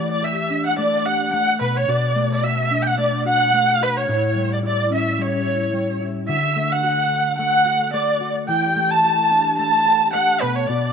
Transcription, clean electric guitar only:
0, 0, Header, 1, 2, 480
1, 0, Start_track
1, 0, Key_signature, 2, "major"
1, 0, Tempo, 550206
1, 1642, Time_signature, 4, 2, 24, 8
1, 9533, End_track
2, 0, Start_track
2, 0, Title_t, "Clean electric guitar"
2, 0, Program_c, 0, 27
2, 0, Note_on_c, 0, 52, 85
2, 0, Note_on_c, 0, 57, 59
2, 0, Note_on_c, 0, 67, 68
2, 185, Note_off_c, 0, 67, 0
2, 196, Note_on_c, 0, 67, 64
2, 438, Note_on_c, 0, 62, 61
2, 677, Note_off_c, 0, 57, 0
2, 680, Note_on_c, 0, 57, 67
2, 914, Note_off_c, 0, 67, 0
2, 925, Note_on_c, 0, 67, 54
2, 1159, Note_off_c, 0, 57, 0
2, 1162, Note_on_c, 0, 57, 64
2, 1400, Note_on_c, 0, 47, 67
2, 1451, Note_off_c, 0, 52, 0
2, 1456, Note_off_c, 0, 67, 0
2, 1628, Note_off_c, 0, 47, 0
2, 1638, Note_on_c, 0, 47, 86
2, 1644, Note_on_c, 0, 66, 71
2, 1665, Note_off_c, 0, 57, 0
2, 1882, Note_on_c, 0, 57, 63
2, 2116, Note_off_c, 0, 66, 0
2, 2127, Note_on_c, 0, 66, 61
2, 2360, Note_off_c, 0, 62, 0
2, 2363, Note_on_c, 0, 62, 60
2, 2595, Note_off_c, 0, 57, 0
2, 2598, Note_on_c, 0, 57, 61
2, 2828, Note_off_c, 0, 66, 0
2, 2838, Note_on_c, 0, 66, 61
2, 3080, Note_off_c, 0, 57, 0
2, 3084, Note_on_c, 0, 57, 62
2, 3313, Note_off_c, 0, 66, 0
2, 3324, Note_on_c, 0, 66, 61
2, 3559, Note_off_c, 0, 47, 0
2, 3563, Note_off_c, 0, 66, 0
2, 3563, Note_on_c, 0, 45, 82
2, 3568, Note_on_c, 0, 64, 70
2, 3615, Note_off_c, 0, 62, 0
2, 3795, Note_off_c, 0, 57, 0
2, 3798, Note_on_c, 0, 55, 59
2, 4029, Note_off_c, 0, 64, 0
2, 4039, Note_on_c, 0, 64, 66
2, 4278, Note_on_c, 0, 61, 61
2, 4513, Note_off_c, 0, 55, 0
2, 4523, Note_on_c, 0, 55, 66
2, 4748, Note_off_c, 0, 64, 0
2, 4759, Note_on_c, 0, 64, 62
2, 4991, Note_off_c, 0, 55, 0
2, 5001, Note_on_c, 0, 55, 59
2, 5230, Note_off_c, 0, 64, 0
2, 5241, Note_on_c, 0, 64, 59
2, 5483, Note_off_c, 0, 45, 0
2, 5483, Note_on_c, 0, 50, 87
2, 5489, Note_on_c, 0, 66, 69
2, 5534, Note_off_c, 0, 64, 0
2, 5535, Note_off_c, 0, 55, 0
2, 5718, Note_off_c, 0, 61, 0
2, 5722, Note_on_c, 0, 57, 62
2, 5956, Note_off_c, 0, 66, 0
2, 5960, Note_on_c, 0, 66, 62
2, 6443, Note_off_c, 0, 57, 0
2, 6446, Note_on_c, 0, 57, 65
2, 6675, Note_off_c, 0, 66, 0
2, 6679, Note_on_c, 0, 66, 62
2, 6919, Note_off_c, 0, 57, 0
2, 6922, Note_on_c, 0, 57, 64
2, 7156, Note_off_c, 0, 66, 0
2, 7160, Note_on_c, 0, 66, 58
2, 7401, Note_on_c, 0, 52, 83
2, 7402, Note_off_c, 0, 66, 0
2, 7405, Note_on_c, 0, 67, 67
2, 7427, Note_off_c, 0, 50, 0
2, 7638, Note_off_c, 0, 57, 0
2, 7642, Note_on_c, 0, 57, 62
2, 7876, Note_off_c, 0, 67, 0
2, 7887, Note_on_c, 0, 67, 67
2, 8124, Note_on_c, 0, 62, 60
2, 8361, Note_off_c, 0, 57, 0
2, 8364, Note_on_c, 0, 57, 61
2, 8594, Note_off_c, 0, 67, 0
2, 8605, Note_on_c, 0, 67, 62
2, 8846, Note_off_c, 0, 57, 0
2, 8850, Note_on_c, 0, 57, 59
2, 9093, Note_on_c, 0, 47, 64
2, 9134, Note_off_c, 0, 52, 0
2, 9137, Note_off_c, 0, 67, 0
2, 9314, Note_off_c, 0, 47, 0
2, 9324, Note_on_c, 0, 47, 84
2, 9329, Note_on_c, 0, 66, 69
2, 9350, Note_off_c, 0, 57, 0
2, 9533, Note_off_c, 0, 47, 0
2, 9533, Note_off_c, 0, 62, 0
2, 9533, Note_off_c, 0, 66, 0
2, 9533, End_track
0, 0, End_of_file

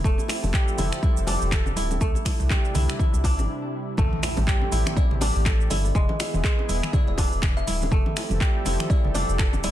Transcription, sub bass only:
0, 0, Header, 1, 2, 480
1, 0, Start_track
1, 0, Tempo, 491803
1, 47, Time_signature, 4, 2, 24, 8
1, 9477, End_track
2, 0, Start_track
2, 0, Title_t, "Sub bass"
2, 0, Program_c, 0, 38
2, 43, Note_on_c, 0, 29, 100
2, 158, Note_off_c, 0, 29, 0
2, 423, Note_on_c, 0, 29, 81
2, 507, Note_off_c, 0, 29, 0
2, 764, Note_on_c, 0, 29, 94
2, 878, Note_off_c, 0, 29, 0
2, 1142, Note_on_c, 0, 29, 89
2, 1332, Note_off_c, 0, 29, 0
2, 1383, Note_on_c, 0, 29, 99
2, 1695, Note_off_c, 0, 29, 0
2, 1726, Note_on_c, 0, 26, 89
2, 1929, Note_off_c, 0, 26, 0
2, 1963, Note_on_c, 0, 36, 104
2, 2078, Note_off_c, 0, 36, 0
2, 2342, Note_on_c, 0, 36, 85
2, 2426, Note_off_c, 0, 36, 0
2, 2683, Note_on_c, 0, 36, 94
2, 2798, Note_off_c, 0, 36, 0
2, 3061, Note_on_c, 0, 36, 93
2, 3305, Note_on_c, 0, 31, 105
2, 3319, Note_off_c, 0, 36, 0
2, 3387, Note_off_c, 0, 31, 0
2, 3884, Note_on_c, 0, 33, 99
2, 3999, Note_off_c, 0, 33, 0
2, 4267, Note_on_c, 0, 33, 85
2, 4348, Note_off_c, 0, 33, 0
2, 4608, Note_on_c, 0, 33, 97
2, 4721, Note_off_c, 0, 33, 0
2, 4990, Note_on_c, 0, 33, 91
2, 5176, Note_off_c, 0, 33, 0
2, 5229, Note_on_c, 0, 33, 101
2, 5538, Note_off_c, 0, 33, 0
2, 5571, Note_on_c, 0, 31, 89
2, 5771, Note_off_c, 0, 31, 0
2, 5808, Note_on_c, 0, 28, 101
2, 5921, Note_off_c, 0, 28, 0
2, 6188, Note_on_c, 0, 28, 88
2, 6269, Note_off_c, 0, 28, 0
2, 6531, Note_on_c, 0, 28, 97
2, 6642, Note_off_c, 0, 28, 0
2, 6906, Note_on_c, 0, 28, 96
2, 7094, Note_off_c, 0, 28, 0
2, 7145, Note_on_c, 0, 28, 97
2, 7456, Note_off_c, 0, 28, 0
2, 7491, Note_on_c, 0, 26, 91
2, 7691, Note_off_c, 0, 26, 0
2, 7727, Note_on_c, 0, 29, 97
2, 7840, Note_off_c, 0, 29, 0
2, 8106, Note_on_c, 0, 29, 86
2, 8188, Note_off_c, 0, 29, 0
2, 8450, Note_on_c, 0, 29, 93
2, 8561, Note_off_c, 0, 29, 0
2, 8827, Note_on_c, 0, 29, 92
2, 9015, Note_off_c, 0, 29, 0
2, 9066, Note_on_c, 0, 29, 100
2, 9377, Note_off_c, 0, 29, 0
2, 9406, Note_on_c, 0, 26, 88
2, 9477, Note_off_c, 0, 26, 0
2, 9477, End_track
0, 0, End_of_file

